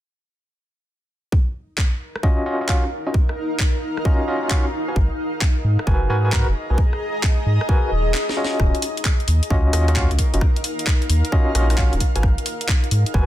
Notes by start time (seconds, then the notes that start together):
1.32 D#4, kick
1.52 A#4
1.78 kick, clap
1.98 F5
2.16 cross-stick
2.23 C#4 F4 F#4 D#5, kick
2.46 C#4 F4 F#4 D#5
2.61 C#4 F4 F#4 D#5
2.69 C#4 F4 F#4 F5, kick, clap
2.84 cross-stick
3.07 C#4 F4 F#4 D#5
3.14 kick
3.29 cross-stick
3.60 kick, clap
3.97 cross-stick
4.05 C#4 F4 F#4 D#5, kick
4.28 C#4 F4 F#4 D#5
4.43 C#4 F4 F#4 D#5
4.50 C#4 F4 F#4 F5, kick, clap
4.73 G#4
4.88 F#4 A#4 B4 G#5 A#5
4.96 G#1, kick
5.06 D#5
5.41 kick, clap
5.64 G#2
5.79 cross-stick
5.87 F#1 F#4 A#4 B4 G#5, kick
6.10 G#2 F#4 A#4 B4 G#5
6.25 F#4 A#4 B4 G#5
6.32 A#4 B4, kick, clap
6.48 F#1, cross-stick
6.70 B1 F#4 A#4 B4 G#5
6.78 kick
6.93 cross-stick
7.23 kick, clap
7.46 G#2
7.61 cross-stick
7.69 F#4 A#4 B4 G#5, kick
7.92 D#1
8.14 snare, clap
8.29 snare
8.37 C#4 F4 F#4 D#5
8.44 snare
8.60 D#1 D#4, kick, cross-stick
8.75 A#4, closed hi-hat
8.82 open hi-hat
8.97 closed hi-hat
9.05 kick, clap
9.20 F5, closed hi-hat
9.28 D#2, open hi-hat
9.43 closed hi-hat
9.50 C#2 C#4 F4 F#4 D#5, kick
9.73 D#2 C#4 F4 F#4 D#5, cross-stick, open hi-hat
9.88 C#4 F4 F#4 D#5, cross-stick, closed hi-hat
9.96 C#4 F4 F#4 F5, kick, clap
10.11 C#2, closed hi-hat
10.19 kick, open hi-hat
10.34 F#1 C#4 F4 F#4 D#5, closed hi-hat
10.41 kick, cross-stick
10.56 closed hi-hat
10.64 open hi-hat
10.79 closed hi-hat
10.87 kick, clap
11.02 closed hi-hat
11.10 D#2, open hi-hat
11.25 closed hi-hat
11.32 C#4 F4 F#4 D#5, kick
11.55 A#1 C#4 F4 F#4 D#5, cross-stick, open hi-hat
11.70 C#4 F4 F#4, cross-stick, open hi-hat
11.78 C#4 F4 F#4 F5, kick, clap
11.93 D#1, closed hi-hat
12.00 G#4, kick, open hi-hat
12.14 G#1 F#4 A#4 B4 D#5 G#5, closed hi-hat
12.23 G#1, kick, cross-stick
12.38 closed hi-hat
12.46 open hi-hat
12.61 A#5, closed hi-hat
12.69 kick, clap
12.84 closed hi-hat
12.91 G#2, open hi-hat
13.06 closed hi-hat
13.14 F#1 F#4 A#4 B4 G#5, kick